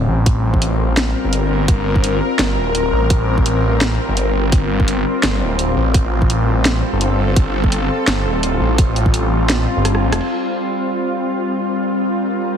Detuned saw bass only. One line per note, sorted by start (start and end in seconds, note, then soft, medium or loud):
0.08 1.14 A1 medium
1.24 1.49 G1 medium
1.50 1.67 G1 loud
1.68 2.21 G1 loud
2.39 2.59 G1 loud
2.57 2.92 D1 loud
2.92 3.98 A1 medium
4.09 4.34 G1 medium
4.35 4.51 G1 loud
4.52 5.05 G1 medium
5.23 5.43 G1 loud
5.41 5.76 D1 loud
5.77 6.82 A1 medium
6.93 7.18 G1 medium
7.18 7.35 G1 loud
7.36 7.89 G1 loud
8.07 8.27 G1 loud
8.25 8.60 D1 loud
8.60 9.66 A1 medium
9.77 10.04 G1 medium
10.03 10.12 A#1 medium
10.12 10.20 F1 medium